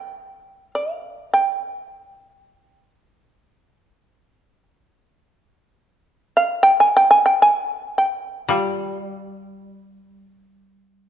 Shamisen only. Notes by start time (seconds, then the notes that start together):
Already playing: G5
0.23 F#5
0.36 F5
0.75 F5
1.34 G5
6.37 F5
6.63 G5
6.80 G#5
6.97 G5
7.11 G#5
7.26 G5
7.42 G#5
7.98 G5
8.50 F4
9.09 F#4
9.47 G4